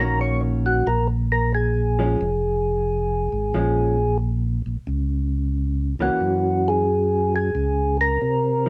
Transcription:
0.00 0.83 A#1 medium
0.00 0.83 D#3 medium
0.00 0.83 A#3 medium
0.00 0.83 C#4 medium
0.00 0.83 F#4 medium
0.00 0.19 A#4 medium
0.21 0.41 C#5 medium
0.66 0.88 F#4 medium
0.87 2.17 A#1 medium
0.87 1.07 A#4 medium
1.32 1.52 A#4 medium
1.55 4.18 G#4 medium
1.99 2.19 F3 medium
1.99 2.19 G#3 medium
1.99 2.19 C#4 medium
2.21 3.29 F1 medium
3.32 3.53 G#1 medium
3.54 4.62 A#1 medium
3.54 3.95 F3 medium
3.54 3.95 G#3 medium
3.54 3.96 C#4 medium
4.66 4.77 A#1 soft
4.87 5.95 C#2 medium
5.99 6.10 C#2 soft
5.99 6.84 E3 medium
5.99 6.85 A#3 medium
5.99 6.85 C#4 medium
5.99 6.70 F#4 medium
6.21 7.51 F#2 medium
6.68 7.34 G#4 medium
7.36 7.97 G#4 medium
7.55 8.18 C#2 medium
8.01 8.69 A#4 loud
8.21 8.69 C3 medium
8.66 8.69 F3 medium

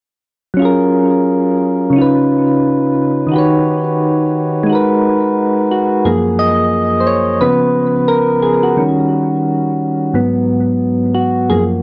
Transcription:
0.54 1.91 F#3 medium
0.54 1.92 C#4 medium
0.59 1.93 F4 medium
0.59 1.95 G#4 medium
0.65 1.96 A#4 medium
1.90 3.27 C#3 medium
1.90 3.28 C#4 medium
1.96 3.27 D#4 medium
1.96 3.31 F4 medium
2.02 3.33 B4 medium
3.27 4.63 D#3 medium
3.27 4.64 D#4 medium
3.32 4.66 F#4 medium
3.32 4.67 G4 medium
3.36 4.68 B4 medium
3.36 4.69 C#5 medium
4.63 6.00 G#3 medium
4.63 6.01 D#4 medium
4.70 5.70 F#4 medium
4.70 6.05 A#4 medium
4.75 6.06 B4 medium
5.71 6.07 F#4 medium
6.05 7.38 F#2 medium
6.05 7.38 F3 soft
6.05 7.38 A#3 medium
6.05 6.37 G#4 medium
6.39 6.98 D#5 loud
7.00 7.07 C5 medium
7.07 7.21 C#5 medium
7.41 8.40 C#3 medium
7.41 8.40 F3 soft
7.41 8.40 B3 medium
7.41 8.12 B4 medium
8.08 8.44 A#4 medium
8.42 8.65 G#4 medium
8.63 9.97 F#4 medium
8.77 9.26 D#3 soft
8.77 9.26 G3 soft
8.77 9.27 C#4 medium
10.14 10.63 G#2 medium
10.14 10.63 F#3 medium
10.14 10.63 B3 medium
11.15 11.51 F#4 medium
11.50 11.82 F#2 soft
11.50 11.82 F3 soft
11.50 11.82 A#3 medium
11.50 11.64 G#4 medium

